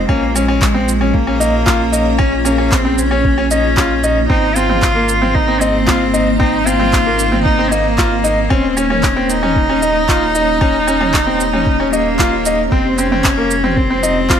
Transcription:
Already playing: ambient pad F4 G#4
0.09 sub bass A#1, cello A#3, ambient pad A#3 C#4 C#5, grand piano C#4, kick
0.35 cello G#3, grand piano C#4, shaker
0.48 grand piano C#4
0.62 kick, clap
0.74 grand piano C4
0.88 shaker
1.01 grand piano C#4
1.13 cello A#3, kick
1.27 grand piano C#4
1.40 grand piano D#4, shaker
1.66 grand piano F4, kick, clap
1.92 grand piano D#4, shaker
2.19 grand piano C#4, cello C#4, kick
2.45 cello A#3, grand piano C#4, shaker
2.58 grand piano C#4
2.71 cello C4, kick, clap
2.85 grand piano C4
2.98 cello C#4, shaker
3.11 grand piano C#4
3.25 kick
3.38 grand piano C#4
3.50 cello C#4, grand piano D#4, shaker
3.77 grand piano F4, kick, clap
4.04 grand piano D#4, shaker
4.29 sub bass G#1, grand piano C4, ambient pad C4 D#4 C5, cello D#4, kick
4.55 grand piano C4, cello F4, shaker
4.69 grand piano C4, mid tom
4.82 kick, clap
4.95 grand piano A#3
5.09 shaker
5.22 grand piano C4, mid tom
5.34 cello D#4, kick
5.48 grand piano C4
5.60 cello C4, grand piano D#4, shaker
5.87 grand piano F4, kick, clap
6.14 grand piano D#4, shaker
6.39 grand piano C4, cello D#4, ambient pad A#4, kick
6.66 grand piano C4, cello F4, shaker
6.80 grand piano C4, mid tom
6.93 kick, clap
7.06 grand piano A#3
7.19 shaker
7.32 grand piano C4, mid tom
7.44 cello D#4, kick
7.59 grand piano C4
7.71 cello A#3, grand piano D#4, shaker
7.98 grand piano F4, kick, clap
8.24 grand piano D#4, shaker
8.49 sub bass D#1, cello C4, grand piano C#4, ambient pad C#4 D#4 G4 C#5, kick
8.76 cello C#4, grand piano C#4, shaker
8.90 grand piano C#4, mid tom
9.03 kick, clap
9.16 grand piano C4
9.28 cello D#4, shaker
9.43 grand piano C#4, mid tom
9.56 kick
9.69 grand piano C#4
9.82 grand piano D#4, shaker
10.09 grand piano F4, kick, clap
10.35 grand piano D#4, shaker
10.61 grand piano C#4, kick
10.87 grand piano C#4, shaker
11.01 grand piano C#4, mid tom
11.14 kick, clap
11.27 grand piano C4
11.40 shaker
11.53 grand piano C#4, mid tom
11.67 kick
11.80 grand piano C#4
11.91 cello A#3, grand piano D#4, shaker
12.19 grand piano F4, kick, clap
12.45 grand piano D#4, shaker
12.71 sub bass F1, ambient pad G#3 F4 C5, cello C4, grand piano C4, kick
12.97 grand piano C4, cello C#4, shaker
13.11 grand piano C4, mid tom
13.24 kick, clap
13.37 grand piano A#3
13.51 shaker
13.64 grand piano C4, mid tom
13.76 cello C4, kick
13.90 grand piano C4
14.03 grand piano D#4, shaker
14.30 grand piano F4, kick, clap

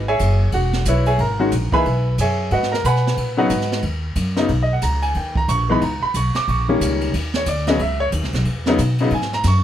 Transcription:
Already playing: upright bass G#1
0.08 grand piano G#4 C#5 E5 G#5
0.19 upright bass F#1, kick, hi-hat pedal, ride
0.52 upright bass E1, grand piano F#4 F#5, kick, ride
0.73 snare
0.85 upright bass B1, grand piano E4 C#5 E5, kick, hi-hat pedal, ride
0.89 grand piano B4
1.06 grand piano G#4 C#5 E5 G#5, ride
1.18 upright bass G#1, grand piano A#4 A#5, kick, ride
1.39 grand piano D#3 G#3 C#4 F#4
1.52 upright bass A#1, kick, hi-hat pedal, ride
1.72 grand piano E3 A#3 D#4 G#4 B4 E5 G#5 B5, muted upright bass stroke, kick, ride
1.85 upright bass B1, kick, ride
2.18 upright bass F#2, grand piano G#4 C#5 E5 G#5, kick, hi-hat pedal, ride
2.51 upright bass G#2, grand piano F#4 B4 D#5 F#5, kick, ride
2.63 snare
2.72 grand piano A#4 A#5, snare
2.84 upright bass B2, grand piano B4 F#5 G#5 B5, kick, hi-hat pedal, ride
2.96 snare
3.07 snare
3.17 upright bass A#2, kick, ride
3.37 grand piano C#3 F#3 B3 D#4 F#4 B4 D#5 F#5
3.50 upright bass G#2, kick, hi-hat pedal, ride
3.61 snare
3.72 snare
3.82 upright bass D#2, kick, ride
4.16 upright bass F#2, kick, hi-hat pedal, ride
4.37 grand piano C#3 F#3 B3 D#4, snare
4.49 upright bass B1, kick, ride
4.63 grand piano D#5
4.73 grand piano F#5
4.82 upright bass C#2, grand piano A#5, kick, hi-hat pedal, ride
5.02 grand piano G#5, ride
5.14 upright bass D#2, grand piano G5, kick, ride
5.36 grand piano A#5, kick
5.48 upright bass A#1, grand piano C#6, kick, hi-hat pedal, ride
5.69 grand piano E3 G#3 B3 D#4 B5
5.81 upright bass C#2, grand piano A#5, kick, ride
6.03 grand piano B5, muted upright bass stroke
6.14 upright bass B1, grand piano C#6, kick, hi-hat pedal, ride
6.34 grand piano D6, snare, ride
6.48 upright bass A#1, grand piano C#6, kick, ride
6.69 grand piano D#3 G3 A#3 C#4
6.81 upright bass C#2, kick, hi-hat pedal, ride
7.01 ride
7.14 upright bass D#2, kick, ride
7.34 grand piano C#5, snare
7.46 upright bass D2, grand piano D5, kick, hi-hat pedal, ride
7.67 grand piano C#3 F#3 B3 C#4 D#5, snare, ride
7.79 upright bass C#2, grand piano E5, kick, ride
8.00 grand piano C#5
8.12 upright bass D#2, kick, hi-hat pedal, ride
8.22 upright bass C#2, snare
8.33 upright bass B1, snare, ride
8.45 upright bass E2, kick, ride
8.66 grand piano C#3 F#3 B3 D#4, snare
8.78 upright bass B2, kick, hi-hat pedal, ride
8.98 grand piano C#3 F#3 B3 D#4, ride
9.10 upright bass G#2, grand piano G#5, kick, ride
9.22 snare
9.33 grand piano A#5, snare
9.43 upright bass F#2, kick, snare, hi-hat pedal, ride
9.48 grand piano C#6

